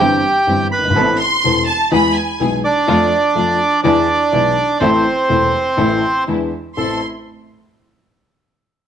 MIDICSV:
0, 0, Header, 1, 5, 480
1, 0, Start_track
1, 0, Key_signature, 0, "minor"
1, 0, Tempo, 484262
1, 951, Time_signature, 4, 2, 24, 8
1, 8798, End_track
2, 0, Start_track
2, 0, Title_t, "Violin section"
2, 0, Program_c, 0, 48
2, 1188, Note_on_c, 0, 84, 110
2, 1631, Note_off_c, 0, 84, 0
2, 1668, Note_on_c, 0, 81, 97
2, 1904, Note_off_c, 0, 81, 0
2, 1916, Note_on_c, 0, 83, 98
2, 2131, Note_off_c, 0, 83, 0
2, 2142, Note_on_c, 0, 80, 82
2, 2500, Note_off_c, 0, 80, 0
2, 6708, Note_on_c, 0, 84, 67
2, 6937, Note_off_c, 0, 84, 0
2, 8798, End_track
3, 0, Start_track
3, 0, Title_t, "Bandoneon"
3, 0, Program_c, 1, 23
3, 0, Note_on_c, 1, 67, 88
3, 0, Note_on_c, 1, 79, 115
3, 666, Note_off_c, 1, 79, 0
3, 672, Note_off_c, 1, 67, 0
3, 711, Note_on_c, 1, 83, 109
3, 722, Note_on_c, 1, 71, 89
3, 1155, Note_off_c, 1, 83, 0
3, 1162, Note_off_c, 1, 71, 0
3, 2620, Note_on_c, 1, 74, 127
3, 2628, Note_on_c, 1, 62, 102
3, 3769, Note_off_c, 1, 74, 0
3, 3773, Note_off_c, 1, 62, 0
3, 3802, Note_on_c, 1, 74, 119
3, 3826, Note_on_c, 1, 62, 88
3, 4741, Note_off_c, 1, 62, 0
3, 4758, Note_on_c, 1, 72, 101
3, 4777, Note_on_c, 1, 60, 77
3, 4797, Note_off_c, 1, 74, 0
3, 6179, Note_off_c, 1, 72, 0
3, 6188, Note_off_c, 1, 60, 0
3, 6720, Note_on_c, 1, 69, 80
3, 6943, Note_off_c, 1, 69, 0
3, 8798, End_track
4, 0, Start_track
4, 0, Title_t, "String section"
4, 0, Program_c, 2, 48
4, 0, Note_on_c, 2, 55, 76
4, 0, Note_on_c, 2, 60, 72
4, 0, Note_on_c, 2, 64, 70
4, 0, Note_on_c, 2, 67, 84
4, 191, Note_off_c, 2, 55, 0
4, 192, Note_off_c, 2, 60, 0
4, 193, Note_off_c, 2, 64, 0
4, 193, Note_off_c, 2, 67, 0
4, 472, Note_on_c, 2, 55, 61
4, 474, Note_on_c, 2, 60, 51
4, 475, Note_on_c, 2, 64, 50
4, 475, Note_on_c, 2, 67, 65
4, 673, Note_off_c, 2, 55, 0
4, 674, Note_off_c, 2, 60, 0
4, 675, Note_off_c, 2, 64, 0
4, 675, Note_off_c, 2, 67, 0
4, 946, Note_on_c, 2, 59, 82
4, 949, Note_on_c, 2, 69, 88
4, 950, Note_on_c, 2, 60, 77
4, 1149, Note_off_c, 2, 59, 0
4, 1150, Note_off_c, 2, 69, 0
4, 1151, Note_off_c, 2, 60, 0
4, 1424, Note_on_c, 2, 59, 56
4, 1427, Note_on_c, 2, 60, 50
4, 1428, Note_on_c, 2, 69, 55
4, 1625, Note_off_c, 2, 59, 0
4, 1626, Note_off_c, 2, 60, 0
4, 1627, Note_off_c, 2, 69, 0
4, 1899, Note_on_c, 2, 59, 77
4, 1899, Note_on_c, 2, 64, 76
4, 1902, Note_on_c, 2, 68, 86
4, 2100, Note_off_c, 2, 59, 0
4, 2101, Note_off_c, 2, 64, 0
4, 2102, Note_off_c, 2, 68, 0
4, 2375, Note_on_c, 2, 59, 63
4, 2378, Note_on_c, 2, 64, 56
4, 2379, Note_on_c, 2, 68, 70
4, 2578, Note_off_c, 2, 59, 0
4, 2579, Note_off_c, 2, 64, 0
4, 2580, Note_off_c, 2, 68, 0
4, 2848, Note_on_c, 2, 57, 72
4, 2849, Note_on_c, 2, 41, 78
4, 2850, Note_on_c, 2, 62, 73
4, 2850, Note_on_c, 2, 65, 92
4, 3053, Note_off_c, 2, 41, 0
4, 3053, Note_off_c, 2, 57, 0
4, 3053, Note_off_c, 2, 62, 0
4, 3054, Note_off_c, 2, 65, 0
4, 3325, Note_on_c, 2, 41, 57
4, 3325, Note_on_c, 2, 57, 50
4, 3326, Note_on_c, 2, 62, 52
4, 3328, Note_on_c, 2, 65, 62
4, 3528, Note_off_c, 2, 41, 0
4, 3528, Note_off_c, 2, 57, 0
4, 3528, Note_off_c, 2, 62, 0
4, 3529, Note_off_c, 2, 65, 0
4, 3800, Note_on_c, 2, 56, 74
4, 3802, Note_on_c, 2, 62, 70
4, 3805, Note_on_c, 2, 64, 92
4, 4006, Note_off_c, 2, 56, 0
4, 4007, Note_off_c, 2, 62, 0
4, 4008, Note_off_c, 2, 64, 0
4, 4279, Note_on_c, 2, 56, 57
4, 4279, Note_on_c, 2, 62, 52
4, 4282, Note_on_c, 2, 64, 66
4, 4486, Note_off_c, 2, 56, 0
4, 4487, Note_off_c, 2, 62, 0
4, 4488, Note_off_c, 2, 64, 0
4, 4758, Note_on_c, 2, 57, 82
4, 4761, Note_on_c, 2, 60, 72
4, 4764, Note_on_c, 2, 64, 89
4, 4967, Note_off_c, 2, 57, 0
4, 4968, Note_off_c, 2, 60, 0
4, 4970, Note_off_c, 2, 64, 0
4, 5241, Note_on_c, 2, 57, 52
4, 5244, Note_on_c, 2, 60, 50
4, 5247, Note_on_c, 2, 64, 62
4, 5447, Note_off_c, 2, 57, 0
4, 5449, Note_off_c, 2, 60, 0
4, 5450, Note_off_c, 2, 64, 0
4, 5722, Note_on_c, 2, 57, 72
4, 5725, Note_on_c, 2, 60, 66
4, 5725, Note_on_c, 2, 64, 82
4, 5933, Note_off_c, 2, 57, 0
4, 5934, Note_off_c, 2, 60, 0
4, 5934, Note_off_c, 2, 64, 0
4, 6215, Note_on_c, 2, 56, 57
4, 6218, Note_on_c, 2, 62, 53
4, 6219, Note_on_c, 2, 64, 64
4, 6428, Note_off_c, 2, 56, 0
4, 6430, Note_off_c, 2, 62, 0
4, 6430, Note_off_c, 2, 64, 0
4, 6709, Note_on_c, 2, 57, 54
4, 6709, Note_on_c, 2, 60, 48
4, 6709, Note_on_c, 2, 64, 61
4, 6915, Note_off_c, 2, 57, 0
4, 6915, Note_off_c, 2, 60, 0
4, 6915, Note_off_c, 2, 64, 0
4, 8798, End_track
5, 0, Start_track
5, 0, Title_t, "Grand piano"
5, 0, Program_c, 3, 0
5, 0, Note_on_c, 3, 31, 84
5, 0, Note_on_c, 3, 43, 83
5, 0, Note_on_c, 3, 52, 69
5, 0, Note_on_c, 3, 55, 74
5, 0, Note_on_c, 3, 60, 72
5, 1, Note_on_c, 3, 67, 81
5, 193, Note_off_c, 3, 31, 0
5, 193, Note_off_c, 3, 52, 0
5, 194, Note_off_c, 3, 43, 0
5, 195, Note_off_c, 3, 60, 0
5, 196, Note_off_c, 3, 55, 0
5, 197, Note_off_c, 3, 67, 0
5, 464, Note_on_c, 3, 43, 56
5, 467, Note_on_c, 3, 60, 43
5, 468, Note_on_c, 3, 31, 55
5, 468, Note_on_c, 3, 55, 48
5, 469, Note_on_c, 3, 52, 42
5, 474, Note_on_c, 3, 67, 57
5, 670, Note_off_c, 3, 43, 0
5, 670, Note_off_c, 3, 60, 0
5, 671, Note_off_c, 3, 31, 0
5, 671, Note_off_c, 3, 55, 0
5, 672, Note_off_c, 3, 52, 0
5, 674, Note_off_c, 3, 67, 0
5, 777, Note_on_c, 3, 30, 53
5, 834, Note_off_c, 3, 30, 0
5, 838, Note_on_c, 3, 31, 61
5, 893, Note_on_c, 3, 32, 76
5, 894, Note_off_c, 3, 31, 0
5, 945, Note_on_c, 3, 52, 70
5, 947, Note_on_c, 3, 59, 74
5, 949, Note_on_c, 3, 69, 87
5, 950, Note_on_c, 3, 60, 69
5, 951, Note_off_c, 3, 32, 0
5, 951, Note_on_c, 3, 33, 87
5, 951, Note_on_c, 3, 45, 89
5, 1148, Note_off_c, 3, 52, 0
5, 1149, Note_off_c, 3, 59, 0
5, 1150, Note_off_c, 3, 69, 0
5, 1151, Note_off_c, 3, 33, 0
5, 1151, Note_off_c, 3, 45, 0
5, 1151, Note_off_c, 3, 60, 0
5, 1426, Note_on_c, 3, 52, 50
5, 1431, Note_on_c, 3, 59, 45
5, 1432, Note_on_c, 3, 40, 63
5, 1432, Note_on_c, 3, 60, 48
5, 1433, Note_on_c, 3, 69, 58
5, 1434, Note_on_c, 3, 28, 59
5, 1626, Note_off_c, 3, 52, 0
5, 1628, Note_off_c, 3, 59, 0
5, 1629, Note_off_c, 3, 40, 0
5, 1629, Note_off_c, 3, 60, 0
5, 1630, Note_off_c, 3, 28, 0
5, 1630, Note_off_c, 3, 69, 0
5, 1898, Note_on_c, 3, 52, 90
5, 1902, Note_on_c, 3, 40, 93
5, 1902, Note_on_c, 3, 56, 75
5, 1902, Note_on_c, 3, 59, 68
5, 1904, Note_on_c, 3, 68, 84
5, 2102, Note_off_c, 3, 40, 0
5, 2102, Note_off_c, 3, 56, 0
5, 2102, Note_off_c, 3, 59, 0
5, 2103, Note_off_c, 3, 52, 0
5, 2103, Note_off_c, 3, 68, 0
5, 2377, Note_on_c, 3, 56, 44
5, 2379, Note_on_c, 3, 35, 59
5, 2379, Note_on_c, 3, 52, 50
5, 2381, Note_on_c, 3, 47, 57
5, 2383, Note_on_c, 3, 59, 45
5, 2384, Note_on_c, 3, 68, 51
5, 2579, Note_off_c, 3, 56, 0
5, 2580, Note_off_c, 3, 35, 0
5, 2580, Note_off_c, 3, 52, 0
5, 2581, Note_off_c, 3, 47, 0
5, 2582, Note_off_c, 3, 59, 0
5, 2582, Note_off_c, 3, 68, 0
5, 2852, Note_on_c, 3, 41, 91
5, 2852, Note_on_c, 3, 53, 94
5, 2852, Note_on_c, 3, 57, 75
5, 2856, Note_on_c, 3, 62, 69
5, 2857, Note_on_c, 3, 69, 87
5, 3054, Note_off_c, 3, 41, 0
5, 3054, Note_off_c, 3, 57, 0
5, 3055, Note_off_c, 3, 53, 0
5, 3057, Note_off_c, 3, 62, 0
5, 3057, Note_off_c, 3, 69, 0
5, 3321, Note_on_c, 3, 53, 62
5, 3326, Note_on_c, 3, 41, 66
5, 3326, Note_on_c, 3, 57, 45
5, 3326, Note_on_c, 3, 62, 48
5, 3328, Note_on_c, 3, 69, 54
5, 3528, Note_off_c, 3, 41, 0
5, 3528, Note_off_c, 3, 57, 0
5, 3528, Note_off_c, 3, 62, 0
5, 3529, Note_off_c, 3, 53, 0
5, 3529, Note_off_c, 3, 69, 0
5, 3804, Note_on_c, 3, 59, 72
5, 3806, Note_on_c, 3, 40, 96
5, 3806, Note_on_c, 3, 52, 90
5, 3806, Note_on_c, 3, 62, 69
5, 3809, Note_on_c, 3, 68, 88
5, 4008, Note_off_c, 3, 40, 0
5, 4008, Note_off_c, 3, 59, 0
5, 4009, Note_off_c, 3, 52, 0
5, 4009, Note_off_c, 3, 62, 0
5, 4010, Note_off_c, 3, 68, 0
5, 4286, Note_on_c, 3, 52, 50
5, 4289, Note_on_c, 3, 35, 61
5, 4289, Note_on_c, 3, 68, 53
5, 4290, Note_on_c, 3, 62, 44
5, 4291, Note_on_c, 3, 47, 56
5, 4291, Note_on_c, 3, 59, 46
5, 4490, Note_off_c, 3, 52, 0
5, 4491, Note_off_c, 3, 68, 0
5, 4492, Note_off_c, 3, 35, 0
5, 4492, Note_off_c, 3, 47, 0
5, 4492, Note_off_c, 3, 62, 0
5, 4493, Note_off_c, 3, 59, 0
5, 4765, Note_on_c, 3, 57, 70
5, 4766, Note_on_c, 3, 52, 71
5, 4767, Note_on_c, 3, 60, 68
5, 4768, Note_on_c, 3, 33, 84
5, 4769, Note_on_c, 3, 45, 96
5, 4772, Note_on_c, 3, 69, 87
5, 4970, Note_off_c, 3, 57, 0
5, 4971, Note_off_c, 3, 52, 0
5, 4971, Note_off_c, 3, 60, 0
5, 4972, Note_off_c, 3, 33, 0
5, 4972, Note_off_c, 3, 45, 0
5, 4974, Note_off_c, 3, 69, 0
5, 5244, Note_on_c, 3, 40, 59
5, 5244, Note_on_c, 3, 52, 52
5, 5244, Note_on_c, 3, 57, 50
5, 5245, Note_on_c, 3, 60, 46
5, 5247, Note_on_c, 3, 28, 60
5, 5248, Note_on_c, 3, 69, 55
5, 5449, Note_off_c, 3, 40, 0
5, 5449, Note_off_c, 3, 52, 0
5, 5449, Note_off_c, 3, 57, 0
5, 5450, Note_off_c, 3, 28, 0
5, 5450, Note_off_c, 3, 60, 0
5, 5451, Note_off_c, 3, 69, 0
5, 5719, Note_on_c, 3, 52, 77
5, 5721, Note_on_c, 3, 45, 89
5, 5723, Note_on_c, 3, 60, 73
5, 5725, Note_on_c, 3, 57, 70
5, 5725, Note_on_c, 3, 69, 86
5, 5726, Note_on_c, 3, 33, 84
5, 5931, Note_off_c, 3, 52, 0
5, 5932, Note_off_c, 3, 45, 0
5, 5933, Note_off_c, 3, 60, 0
5, 5934, Note_off_c, 3, 57, 0
5, 5934, Note_off_c, 3, 69, 0
5, 5935, Note_off_c, 3, 33, 0
5, 6224, Note_on_c, 3, 52, 57
5, 6224, Note_on_c, 3, 59, 42
5, 6227, Note_on_c, 3, 40, 57
5, 6229, Note_on_c, 3, 62, 41
5, 6232, Note_on_c, 3, 68, 52
5, 6432, Note_off_c, 3, 59, 0
5, 6433, Note_off_c, 3, 52, 0
5, 6434, Note_off_c, 3, 40, 0
5, 6435, Note_off_c, 3, 62, 0
5, 6436, Note_off_c, 3, 68, 0
5, 6712, Note_on_c, 3, 69, 57
5, 6714, Note_on_c, 3, 33, 53
5, 6714, Note_on_c, 3, 60, 49
5, 6715, Note_on_c, 3, 64, 48
5, 6916, Note_off_c, 3, 69, 0
5, 6917, Note_off_c, 3, 33, 0
5, 6917, Note_off_c, 3, 60, 0
5, 6918, Note_off_c, 3, 64, 0
5, 8798, End_track
0, 0, End_of_file